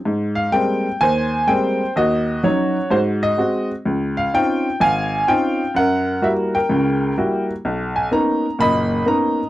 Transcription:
0.05 0.47 G#2 medium
0.35 0.51 F5 medium
0.52 0.85 G3 medium
0.52 0.85 G#3 soft
0.52 0.86 A#3 soft
0.52 0.86 C4 medium
0.52 1.02 G5 medium
1.01 1.42 D#2 medium
1.01 1.93 C5 medium
1.01 1.50 G#5 loud
1.47 1.80 G3 medium
1.47 1.81 G#3 soft
1.47 1.81 A#3 soft
1.47 1.81 C4 medium
1.47 1.92 G5 medium
1.96 2.37 D#2 medium
1.96 2.88 F#4 medium
1.96 2.45 D#5 medium
2.43 2.76 F#3 medium
2.43 2.76 C#4 medium
2.43 2.76 D#4 medium
2.43 2.92 C#5 medium
2.91 3.32 G#2 medium
2.91 3.37 F#4 medium
2.91 2.98 C5 medium
3.23 3.66 D#5 medium
3.37 3.70 G#3 medium
3.37 3.71 C4 soft
3.37 3.71 F#4 medium
3.85 4.27 C#2 medium
4.17 4.34 F5 medium
4.34 4.66 C4 medium
4.34 4.66 C#4 medium
4.34 4.66 D#4 soft
4.34 4.66 F4 medium
4.34 4.83 G5 loud
4.80 5.21 G#1 medium
4.80 5.72 F5 medium
4.80 5.30 G#5 loud
5.28 5.60 C4 medium
5.28 5.61 C#4 soft
5.28 5.61 D#4 soft
5.28 5.61 F4 medium
5.28 5.72 G5 loud
5.74 6.16 F#2 medium
5.74 6.54 A#4 medium
5.74 6.25 F#5 loud
6.22 6.55 G3 medium
6.22 6.55 A#3 soft
6.22 6.55 E4 soft
6.22 6.55 F#4 medium
6.22 6.31 E5 medium
6.55 7.45 A#4 medium
6.55 7.45 G5 medium
6.69 7.11 C#2 medium
6.69 7.11 C#3 medium
7.17 7.50 G3 medium
7.17 7.50 A#3 soft
7.17 7.50 E4 soft
7.17 7.50 F#4 medium
7.65 8.06 B1 medium
7.96 8.11 G#5 medium
8.11 8.44 A#3 medium
8.11 8.44 B3 soft
8.11 8.45 C#4 soft
8.11 8.45 D#4 medium
8.11 8.61 A#5 medium
8.59 9.00 F#1 medium
8.59 9.00 A#2 medium
8.59 9.49 D#5 medium
8.59 9.04 B5 loud
9.06 9.39 A#3 medium
9.06 9.39 B3 soft
9.06 9.39 C#4 soft
9.06 9.39 D#4 medium
9.06 9.49 A#5 medium

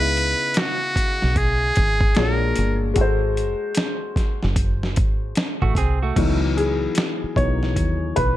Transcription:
0.00 0.34 C#2 loud
0.00 2.11 C#3 medium
0.00 2.12 B3 medium
0.00 2.17 E4 medium
0.00 0.60 B4 loud
0.00 2.15 D#5 medium
0.17 closed hi-hat medium
0.54 snare loud
0.54 closed hi-hat medium
0.59 1.39 F#4 medium
0.96 muted fingered electric bass stroke soft
0.96 kick medium
0.96 closed hi-hat medium
1.22 1.70 B1 medium
1.22 snare soft
1.36 2.19 G#4 loud
1.36 kick medium
1.36 closed hi-hat medium
1.76 2.12 G#1 medium
1.76 kick loud
1.76 closed hi-hat medium
2.01 kick loud
2.15 2.52 A#1 loud
2.15 2.96 A#2 medium
2.15 2.92 G#3 medium
2.15 2.97 D4 medium
2.15 2.95 F#4 medium
2.15 2.35 A4 medium
2.15 snare loud
2.15 closed hi-hat medium
2.19 2.98 C#5 medium
2.35 2.82 A#4 medium
2.56 2.92 G1 medium
2.56 closed hi-hat medium
2.94 3.53 G#1 loud
2.94 6.11 G#3 medium
2.94 6.12 F#4 medium
2.94 kick loud
2.94 closed hi-hat medium
2.98 6.13 A4 medium
2.98 6.15 C5 medium
3.37 closed hi-hat medium
3.75 snare loud
3.75 closed hi-hat medium
4.16 muted fingered electric bass stroke soft
4.16 kick medium
4.16 snare soft
4.16 closed hi-hat medium
4.43 4.98 F#1 medium
4.43 snare soft
4.56 kick medium
4.56 closed hi-hat medium
4.83 snare soft
4.96 5.32 G#1 medium
4.96 kick loud
4.96 closed hi-hat medium
5.35 snare loud
5.35 closed hi-hat medium
5.62 5.75 A1 medium
5.62 5.76 A3 medium
5.62 5.76 F#4 medium
5.62 kick medium
5.75 6.11 C2 medium
5.75 6.01 C4 medium
5.75 6.01 G#4 medium
5.75 kick medium
5.75 closed hi-hat medium
6.03 6.40 A3 medium
6.03 6.40 F#4 medium
6.16 6.87 C#2 medium
6.16 6.74 E3 medium
6.16 6.74 F#3 medium
6.16 6.74 B3 medium
6.16 6.74 D#4 medium
6.16 kick loud
6.16 closed hi-hat medium
6.16 crash medium
6.57 7.33 G#4 medium
6.57 closed hi-hat medium
6.95 snare loud
6.95 closed hi-hat medium
7.24 muted fingered electric bass stroke soft
7.36 7.77 B1 medium
7.36 7.72 E3 soft
7.36 7.72 F#3 soft
7.36 7.73 B3 soft
7.36 7.73 D#4 soft
7.36 8.12 C#5 medium
7.36 kick medium
7.36 closed hi-hat medium
7.63 snare soft
7.76 8.12 D#2 medium
7.76 kick medium
7.76 closed hi-hat medium
8.16 8.37 B1 medium
8.16 8.37 B4 medium
8.16 kick medium
8.16 closed hi-hat medium

